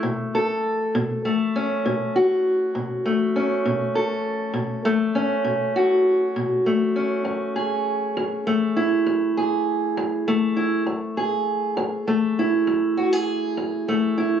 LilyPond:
\new Staff \with { instrumentName = "Steel-string acoustic guitar" } { \time 12/8 \key fis \minor \tempo 4. = 67 << { a8 a'4. a8 cis'4 fis'4. a8 cis'8~ | cis'8 a'4. a8 cis'4 fis'4. a8 cis'8~ | cis'8 gis'4. a8 e'4 gis'4. a8 e'8 | r8 gis'4. a8 e'4 fis'16 gis'4~ gis'16 a8 e'8 | } \\ { b,4 r8 b,4 r8 b,4 r8 b,4 r8 | b,4 r8 b,4 r8 b,4 r8 b,4 r8 | fis,4 r8 fis,4 r8 fis,4 r8 fis,4 r8 | fis,4 r8 fis,4 r8 fis,4 r8 fis,4 r8 | } >> }